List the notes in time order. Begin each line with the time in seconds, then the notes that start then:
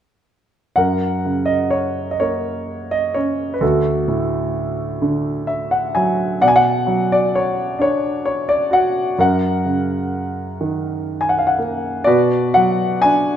0.76 F#2 A#4 F#5
1.25 C#3
1.46 D#5
1.70 C#5
2.11 D#5
2.20 A#3 C#5
2.91 D#5
3.14 C#4 C#5
3.54 B4
3.61 D2 F#4 A4
4.08 A2
5.02 D3
5.47 E5
5.71 F#5
5.95 F#3 G#5
6.41 B2 D5 F#5
6.48 G#5
6.56 F#5
6.87 F#3
7.12 D5
7.35 C#5
7.79 D4 C#5
8.26 C#5
8.49 D5
8.71 F#4 F#5
9.18 F#2 A#4 F#5
9.65 C#3
10.61 D#3
11.21 G#5
11.29 F#5
11.38 F5
11.47 F#5
11.59 A#3
12.04 B2 F#4 B4 D5
12.54 F#3 F#5
13.02 D4 G#5